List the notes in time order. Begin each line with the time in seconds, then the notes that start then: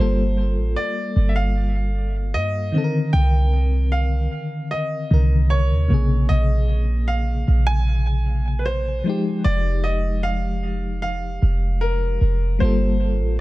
Already playing: G1 G3 A#3 C5
0.00 F4 A4
0.57 A1
0.76 D5
1.16 G1
1.29 E5
1.36 F5
2.34 G2 D#5
2.72 D3 D#3 C4
2.78 A4
2.84 A#4
3.13 C2 G5
3.92 F5
4.71 D#5
5.11 C2 C3 D3 D#3 A#4
5.50 C#5
5.70 D#2
5.88 A#1 C3 C#3 A#3
5.94 G#4
6.29 A#1 D#5
7.08 F5
7.48 A#1
7.67 G#5
8.59 B4
8.66 C5
9.04 F3 G#3 D#4
9.09 G4
9.44 F1 D5
9.84 D#5
10.23 F5
11.02 F5
11.42 F1
11.81 A#4
12.21 F1
12.59 G1 G3 A#3 F4 C5
12.65 A4
13.20 A1